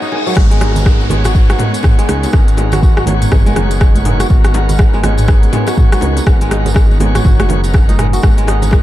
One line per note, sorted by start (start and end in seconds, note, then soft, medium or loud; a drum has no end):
0.00 0.32 G#3 medium
0.00 0.42 G#3 medium
0.00 0.32 D#4 medium
0.00 0.60 D#4 medium
0.00 0.99 F#4 medium
0.00 0.32 A#4 medium
0.00 0.35 C#5 medium
0.00 tambourine soft
0.00 reverse cymbal medium
0.12 0.20 B3 medium
0.12 0.20 C#4 medium
0.12 0.20 F#4 medium
0.12 1.48 G#4 medium
0.12 0.20 G#4 medium
0.12 0.20 A#4 medium
0.12 open hi-hat medium
0.12 low bongo medium
0.27 0.42 F#3 medium
0.27 tambourine medium
0.36 1.54 G#1 loud
0.36 8.83 G#3 medium
0.36 8.83 B3 medium
0.36 1.08 B3 medium
0.36 1.08 C#4 medium
0.36 8.83 D#4 medium
0.36 1.08 F#4 medium
0.36 8.83 A#4 medium
0.36 1.08 A#4 medium
0.36 kick loud
0.36 cross-stick medium
0.36 crash loud
0.36 tambourine medium
0.36 downlifter medium
0.36 low bongo medium
0.36 muted conga medium
0.36 high conga medium
0.51 1.09 G#3 loud
0.51 closed hi-hat soft
0.51 tambourine soft
0.61 2.08 D#4 medium
0.61 cross-stick medium
0.61 open hi-hat medium
0.61 high bongo loud
0.61 low bongo medium
0.61 muted conga soft
0.76 closed hi-hat medium
0.76 tambourine medium
0.76 low conga medium
0.86 kick loud
0.86 cross-stick loud
0.86 tambourine medium
0.86 low bongo medium
1.01 tambourine soft
1.01 muted conga medium
1.10 1.97 G#3 medium
1.10 2.31 B3 medium
1.10 2.31 C#4 medium
1.10 2.31 F#4 medium
1.10 2.31 C#5 loud
1.10 open hi-hat loud
1.10 high bongo medium
1.10 low bongo medium
1.10 high conga medium
1.10 low conga medium
1.24 1.34 F#4 medium
1.24 cross-stick medium
1.24 closed hi-hat medium
1.24 mid tom medium
1.24 tambourine medium
1.24 muted conga soft
1.35 1.49 F#4 medium
1.35 kick loud
1.35 tambourine medium
1.35 low bongo medium
1.49 2.72 F#4 medium
1.49 cross-stick medium
1.49 closed hi-hat soft
1.49 tambourine soft
1.49 muted conga medium
1.59 mid tom medium
1.59 open hi-hat loud
1.59 high bongo loud
1.59 low bongo medium
1.59 high conga medium
1.74 closed hi-hat medium
1.74 tambourine medium
1.74 muted conga soft
1.83 kick loud
1.83 cross-stick medium
1.83 mid tom medium
1.83 tambourine medium
1.83 low bongo medium
1.98 2.57 G#3 loud
1.98 closed hi-hat soft
1.98 tambourine soft
2.08 2.26 C#2 medium
2.08 3.56 D#4 medium
2.08 cross-stick medium
2.08 open hi-hat loud
2.08 low bongo medium
2.08 muted conga medium
2.08 high conga medium
2.23 closed hi-hat medium
2.23 tambourine medium
2.23 high bongo medium
2.33 3.26 G#1 medium
2.33 3.05 B3 medium
2.33 3.05 C#4 medium
2.33 3.05 F#4 medium
2.33 3.05 A#4 medium
2.33 kick loud
2.33 cross-stick medium
2.33 tambourine medium
2.33 low bongo loud
2.33 muted conga medium
2.33 high conga medium
2.48 closed hi-hat soft
2.48 tambourine soft
2.57 3.45 G#3 medium
2.57 open hi-hat loud
2.57 high bongo loud
2.57 low bongo loud
2.57 muted conga soft
2.72 2.82 F#4 medium
2.72 cross-stick medium
2.72 closed hi-hat medium
2.72 tambourine medium
2.72 low conga loud
2.82 2.97 F#4 medium
2.82 kick loud
2.82 tambourine medium
2.82 low bongo medium
2.97 4.19 F#4 medium
2.97 cross-stick loud
2.97 tambourine soft
2.97 muted conga medium
3.06 4.28 B3 medium
3.06 4.28 C#4 medium
3.06 4.28 F#4 medium
3.06 4.28 C#5 loud
3.06 open hi-hat loud
3.06 high bongo medium
3.06 low bongo medium
3.06 high conga loud
3.06 low conga medium
3.22 closed hi-hat medium
3.22 mid tom medium
3.22 tambourine medium
3.22 muted conga soft
3.32 4.25 F#1 medium
3.32 kick loud
3.32 cross-stick loud
3.32 mid tom medium
3.32 tambourine medium
3.32 low bongo medium
3.32 low conga loud
3.46 4.04 G#3 loud
3.46 closed hi-hat soft
3.46 tambourine soft
3.46 muted conga medium
3.46 high conga loud
3.56 5.03 D#4 medium
3.56 cross-stick medium
3.56 open hi-hat loud
3.56 low bongo medium
3.56 high conga medium
3.56 low conga loud
3.71 closed hi-hat medium
3.71 tambourine medium
3.71 muted conga soft
3.81 kick loud
3.81 cross-stick loud
3.81 tambourine medium
3.81 low bongo medium
3.95 closed hi-hat soft
3.95 tambourine soft
3.95 high conga loud
4.05 4.93 G#3 medium
4.05 mid tom medium
4.05 open hi-hat loud
4.05 low bongo loud
4.05 muted conga soft
4.20 4.30 F#4 medium
4.20 cross-stick medium
4.20 closed hi-hat medium
4.20 tambourine medium
4.29 5.48 G#1 loud
4.29 5.02 B3 medium
4.29 5.01 C#4 medium
4.29 4.44 F#4 medium
4.29 5.01 F#4 medium
4.29 5.02 A#4 medium
4.29 kick loud
4.29 tambourine medium
4.29 low bongo medium
4.29 muted conga soft
4.29 high conga medium
4.44 5.67 F#4 medium
4.44 cross-stick medium
4.44 closed hi-hat soft
4.44 tambourine soft
4.54 open hi-hat medium
4.54 high bongo loud
4.54 low bongo loud
4.54 muted conga soft
4.69 closed hi-hat medium
4.69 tambourine medium
4.69 low conga loud
4.79 kick loud
4.79 cross-stick loud
4.79 tambourine medium
4.79 low bongo medium
4.93 5.52 G#3 loud
4.93 tambourine soft
4.93 muted conga medium
5.03 6.24 B3 medium
5.03 6.24 C#4 medium
5.03 6.51 D#4 medium
5.03 6.24 F#4 medium
5.03 6.24 C#5 loud
5.03 cross-stick medium
5.03 open hi-hat medium
5.03 high bongo medium
5.03 low bongo medium
5.03 high conga medium
5.03 low conga medium
5.18 closed hi-hat medium
5.18 mid tom medium
5.18 tambourine medium
5.18 muted conga soft
5.28 kick loud
5.28 cross-stick loud
5.28 tambourine medium
5.28 low bongo medium
5.43 closed hi-hat soft
5.43 tambourine soft
5.43 muted conga medium
5.53 6.40 G#3 medium
5.53 mid tom medium
5.53 open hi-hat medium
5.53 high bongo loud
5.53 low bongo loud
5.53 high conga medium
5.67 5.77 F#4 medium
5.67 cross-stick medium
5.67 closed hi-hat medium
5.67 tambourine medium
5.67 muted conga soft
5.77 5.92 F#4 medium
5.77 kick loud
5.77 mid tom medium
5.77 tambourine medium
5.77 low bongo medium
5.92 7.15 F#4 medium
5.92 cross-stick medium
5.92 closed hi-hat soft
5.92 tambourine soft
6.01 6.20 C#2 medium
6.01 open hi-hat medium
6.01 low bongo loud
6.01 muted conga medium
6.01 high conga medium
6.17 closed hi-hat medium
6.17 tambourine medium
6.17 high bongo medium
6.27 7.20 G#1 loud
6.27 6.98 B3 medium
6.27 6.98 C#4 medium
6.27 6.98 F#4 medium
6.27 6.98 A#4 medium
6.27 kick loud
6.27 cross-stick loud
6.27 low bongo medium
6.27 muted conga soft
6.27 high conga medium
6.41 6.99 G#3 loud
6.41 closed hi-hat soft
6.41 tambourine soft
6.51 7.88 D#4 medium
6.51 cross-stick medium
6.51 open hi-hat medium
6.51 high bongo loud
6.51 low bongo medium
6.51 muted conga soft
6.66 closed hi-hat medium
6.66 tambourine medium
6.66 low conga medium
6.74 kick loud
6.74 cross-stick loud
6.74 tambourine medium
6.74 low bongo medium
6.91 tambourine soft
6.91 muted conga medium
7.00 7.97 G#3 medium
7.00 7.61 B3 medium
7.00 7.62 C#4 medium
7.00 7.62 F#4 medium
7.00 7.62 C#5 loud
7.00 open hi-hat medium
7.00 high bongo medium
7.00 low bongo loud
7.00 high conga medium
7.00 low conga medium
7.15 7.24 F#4 medium
7.15 cross-stick medium
7.15 closed hi-hat medium
7.15 mid tom medium
7.15 tambourine medium
7.15 muted conga soft
7.25 8.18 F#1 medium
7.25 7.39 F#4 medium
7.25 kick loud
7.25 mid tom medium
7.25 tambourine medium
7.25 low bongo medium
7.25 low conga loud
7.39 8.13 F#4 medium
7.39 cross-stick loud
7.39 closed hi-hat soft
7.39 tambourine soft
7.39 muted conga soft
7.39 high conga loud
7.49 open hi-hat loud
7.49 low bongo medium
7.49 high conga medium
7.49 low conga loud
7.64 7.96 B3 medium
7.64 7.96 C#4 medium
7.64 7.96 F#4 medium
7.64 7.96 A#4 medium
7.64 closed hi-hat soft
7.64 tambourine medium
7.64 muted conga soft
7.74 kick loud
7.74 cross-stick medium
7.74 tambourine medium
7.74 low bongo medium
7.89 8.47 D#4 medium
7.89 closed hi-hat soft
7.89 tambourine soft
7.89 high conga loud
7.98 8.36 G#3 medium
7.98 8.07 B3 medium
7.98 8.07 C#4 medium
7.98 8.07 F#4 medium
7.98 8.07 A#4 medium
7.98 cross-stick medium
7.98 mid tom medium
7.98 open hi-hat loud
7.98 low bongo medium
7.98 muted conga soft
8.13 8.83 F#4 loud
8.13 closed hi-hat medium
8.13 tambourine medium
8.23 8.83 G#1 loud
8.23 8.83 B3 medium
8.23 8.83 C#4 medium
8.23 8.83 F#4 medium
8.23 8.83 A#4 medium
8.23 kick loud
8.23 cross-stick loud
8.23 tambourine medium
8.23 low bongo medium
8.23 muted conga medium
8.23 high conga medium
8.37 8.83 G#3 loud
8.37 closed hi-hat soft
8.37 tambourine soft
8.47 8.83 D#4 medium
8.47 cross-stick medium
8.47 open hi-hat medium
8.47 high bongo loud
8.47 low bongo medium
8.47 muted conga soft
8.62 closed hi-hat medium
8.62 tambourine medium
8.62 low conga medium
8.71 kick loud
8.71 cross-stick loud
8.71 tambourine medium
8.71 low bongo medium